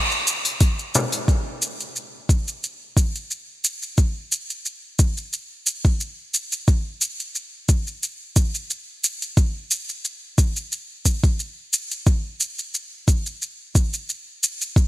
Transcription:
0.11 shaker soft
0.27 open hi-hat soft
0.27 shaker medium
0.45 open hi-hat soft
0.45 shaker soft
0.60 kick loud
0.60 open hi-hat medium
0.60 shaker soft
0.79 shaker soft
0.95 frame drum medium
0.95 shaker medium
1.12 open hi-hat soft
1.12 shaker soft
1.28 kick loud
1.28 shaker soft
1.62 shaker medium
1.80 shaker soft
1.96 shaker soft
2.29 kick medium
2.29 shaker medium
2.48 shaker soft
2.64 shaker soft
2.97 kick medium
2.97 shaker medium
3.15 shaker soft
3.31 shaker soft
3.64 shaker medium
3.82 shaker soft
3.98 kick loud
3.98 shaker soft
4.32 shaker medium
4.50 shaker soft
4.65 shaker soft
4.99 kick medium
4.99 shaker medium
5.17 shaker soft
5.33 shaker soft
5.66 shaker medium
5.85 kick medium
5.85 shaker soft
6.00 shaker soft
6.34 shaker medium
6.52 shaker soft
6.68 kick loud
6.68 shaker soft
7.01 shaker medium
7.20 shaker soft
7.35 shaker soft
7.69 kick medium
7.69 shaker medium
7.87 shaker soft
8.03 shaker soft
8.36 kick medium
8.36 shaker medium
8.55 shaker soft
8.70 shaker soft
9.04 shaker medium
9.22 shaker soft
9.37 kick loud
9.37 shaker soft
9.71 shaker medium
9.89 shaker soft
10.05 shaker soft
10.38 kick loud
10.38 shaker medium
10.56 shaker soft
10.72 shaker soft
11.06 kick medium
11.06 shaker medium
11.24 kick medium
11.24 shaker soft
11.40 shaker soft
11.73 shaker medium
11.91 shaker soft
12.07 kick loud
12.07 shaker soft
12.40 shaker medium
12.59 shaker soft
12.74 shaker soft
13.08 kick medium
13.08 shaker medium
13.26 shaker soft
13.42 shaker soft
13.75 kick medium
13.75 shaker medium
13.94 shaker soft
14.09 shaker soft
14.43 shaker medium
14.61 shaker soft
14.76 kick loud
14.76 shaker soft

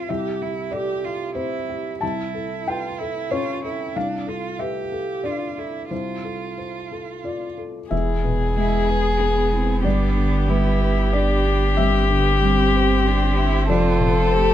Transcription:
0.00 0.10 C2 soft
0.00 0.11 C4 soft
0.00 0.11 F4 soft
0.00 0.12 F4 soft
0.00 0.11 G4 soft
0.00 0.11 A4 soft
0.00 0.11 C5 medium
0.09 1.98 C2 soft
0.09 0.43 G4 soft
0.09 0.68 E5 medium
0.42 0.74 E4 soft
0.42 0.91 G4 soft
0.71 1.06 G4 medium
0.71 1.04 A4 soft
0.71 1.31 D5 medium
1.04 1.35 F4 soft
1.04 1.56 G4 soft
1.35 1.89 C4 soft
1.35 2.01 E4 soft
1.35 1.98 C5 medium
1.69 2.02 G4 soft
2.01 3.92 C2 soft
2.01 2.69 E4 soft
2.01 2.63 A5 medium
2.34 2.86 A4 soft
2.68 3.00 F4 medium
2.68 3.00 B4 soft
2.68 3.28 G5 medium
2.99 3.32 E4 soft
2.99 3.51 A4 soft
3.30 3.83 C#4 soft
3.30 3.63 F4 medium
3.30 3.91 C#5 medium
3.64 3.98 E4 soft
3.64 3.96 A4 soft
3.96 5.87 C2 soft
3.96 4.30 D4 soft
3.96 4.56 F5 medium
4.27 4.62 F4 soft
4.27 4.79 A4 soft
4.59 5.27 G4 medium
4.59 4.92 B4 soft
4.59 5.20 E5 medium
4.92 5.44 A4 soft
5.24 5.77 D4 soft
5.24 5.60 F4 soft
5.24 5.86 D5 medium
5.58 5.90 E4 soft
5.58 5.91 A4 soft
5.91 7.87 C2 soft
5.91 7.55 F4 soft
5.91 6.56 C5 soft
6.24 6.78 A4 soft
6.58 6.91 C5 soft
6.91 7.45 A4 soft
7.24 7.78 F4 soft
7.24 7.88 D5 medium
7.58 7.91 A4 soft
7.91 9.87 E1 medium
7.91 9.81 E2 soft
7.91 11.75 B3 medium
7.91 9.81 G#4 soft
7.91 9.80 E5 medium
8.24 8.76 B2 soft
8.57 9.08 G#3 soft
8.57 8.90 E4 soft
8.89 9.22 G#4 soft
8.89 9.40 B4 soft
9.20 9.54 B3 soft
9.20 9.72 G#4 soft
9.52 9.86 C4 soft
9.52 9.85 E4 soft
9.84 13.71 G1 medium
9.84 11.74 G2 soft
9.84 10.50 D4 medium
9.84 13.66 G4 medium
9.84 10.45 D5 medium
10.16 10.68 D3 soft
10.48 11.00 G3 soft
10.48 11.14 E4 medium
10.48 10.79 B4 medium
10.81 11.33 B4 soft
11.13 11.80 D4 soft
11.13 11.65 G4 soft
11.13 11.74 D5 medium
11.46 11.78 D4 soft
11.77 13.66 G2 medium
11.77 14.54 C4 medium
11.77 12.10 C4 soft
11.77 13.65 E5 medium
12.10 12.62 D3 soft
12.10 12.42 B3 medium
12.42 12.93 G3 soft
12.42 13.08 C4 medium
12.75 13.26 C5 medium
13.06 13.39 D4 medium
13.06 13.57 G4 medium
13.37 13.69 D4 soft
13.37 13.69 E4 medium
13.69 14.54 F1 medium
13.69 14.54 F2 medium
13.69 14.34 F4 medium
13.69 14.54 A4 medium
13.69 14.28 D5 medium
14.00 14.51 C3 soft
14.31 14.54 A3 soft
14.31 14.54 G4 medium
14.31 14.54 C5 medium

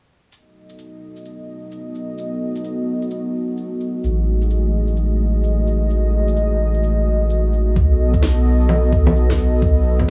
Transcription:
0.32 4.00 B3 medium
0.32 7.72 F#4 medium
0.32 4.00 A4 medium
0.32 4.00 D#5 medium
0.32 shaker soft
0.69 shaker soft
0.79 shaker medium
1.16 shaker soft
1.25 shaker medium
1.72 shaker medium
1.95 shaker soft
2.18 shaker medium
2.55 shaker medium
2.64 shaker medium
3.02 shaker soft
3.11 shaker medium
3.58 shaker medium
3.81 shaker soft
4.04 7.74 A1 medium
4.04 7.73 A3 medium
4.04 7.73 G#4 medium
4.04 7.73 D#5 medium
4.04 shaker medium
4.42 shaker medium
4.51 shaker medium
4.88 shaker soft
4.97 shaker medium
5.44 shaker medium
5.67 shaker soft
5.90 shaker soft
6.28 shaker medium
6.37 shaker medium
6.74 shaker soft
6.83 shaker medium
7.30 shaker medium
7.53 shaker soft
7.76 10.10 B1 medium
7.76 10.10 B3 medium
7.76 10.10 F#4 medium
7.76 10.10 A4 medium
7.76 10.10 D#5 medium
7.76 kick loud
7.76 shaker medium
8.14 kick loud
8.14 shaker medium
8.23 snare loud
8.23 shaker medium
8.60 shaker soft
8.69 low bongo medium
8.69 shaker medium
8.93 kick loud
9.07 low bongo medium
9.16 shaker medium
9.30 kick medium
9.30 snare medium
9.39 shaker soft
9.62 kick loud
9.62 shaker medium
9.99 kick loud
9.99 low bongo soft
9.99 shaker medium

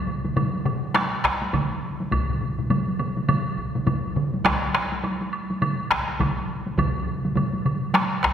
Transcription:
0.07 taiko low-mid medium
0.07 taiko mid medium
0.25 taiko low-mid medium
0.25 taiko mid medium
0.25 taiko high medium
0.36 taiko low-mid medium
0.36 taiko mid medium
0.36 taiko high medium
0.36 high woodblock soft
0.54 taiko high soft
0.65 taiko low-mid loud
0.65 taiko mid medium
0.65 high woodblock soft
0.94 taiko rim medium
0.94 taiko high medium
0.94 high woodblock soft
1.24 taiko rim medium
1.24 taiko medium
1.42 taiko high soft
1.53 taiko medium
1.53 taiko low-mid medium
1.53 taiko mid medium
1.53 taiko high medium
1.53 high woodblock soft
2.00 taiko high soft
2.12 taiko medium
2.12 taiko low-mid medium
2.12 taiko mid medium
2.12 taiko high medium
2.12 high woodblock soft
2.29 taiko low-mid medium
2.29 taiko mid medium
2.41 taiko low-mid medium
2.41 taiko mid medium
2.59 taiko low-mid medium
2.59 taiko mid medium
2.59 taiko high soft
2.70 taiko low-mid medium
2.70 taiko mid medium
2.70 taiko high medium
2.70 high woodblock soft
2.88 taiko high soft
2.99 taiko low-mid medium
2.99 taiko mid medium
2.99 high woodblock soft
3.17 taiko high soft
3.29 taiko low-mid medium
3.29 taiko mid medium
3.29 taiko high medium
3.29 high woodblock soft
3.58 taiko medium
3.75 taiko low-mid medium
3.75 taiko mid medium
3.75 taiko high medium
3.87 taiko medium
3.87 taiko low-mid medium
3.87 taiko mid medium
3.87 taiko high medium
3.87 high woodblock soft
4.16 taiko low-mid medium
4.16 taiko mid medium
4.34 taiko high soft
4.45 taiko rim medium
4.45 taiko medium
4.45 taiko high medium
4.45 high woodblock soft
4.74 taiko rim medium
4.92 taiko high soft
5.04 taiko high medium
5.04 high woodblock soft
5.21 taiko high soft
5.33 high woodblock soft
5.50 taiko high soft
5.62 taiko low-mid medium
5.62 taiko mid medium
5.62 taiko high medium
5.62 high woodblock soft
5.91 taiko rim medium
5.91 taiko medium
6.08 taiko high soft
6.19 taiko medium
6.19 taiko low-mid medium
6.19 taiko mid medium
6.19 taiko high medium
6.19 high woodblock soft
6.67 taiko high soft
6.78 taiko loud
6.78 taiko low-mid medium
6.78 taiko mid loud
6.78 taiko high medium
6.78 high woodblock soft
7.06 taiko low-mid medium
7.06 taiko mid medium
7.24 taiko low-mid medium
7.24 taiko mid medium
7.24 taiko high soft
7.36 taiko low-mid medium
7.36 taiko mid medium
7.36 taiko high medium
7.36 high woodblock soft
7.53 taiko high soft
7.65 taiko low-mid medium
7.65 taiko mid medium
7.65 high woodblock soft
7.94 taiko rim medium
7.94 taiko high medium
7.94 high woodblock soft
8.23 taiko rim medium
8.23 taiko medium

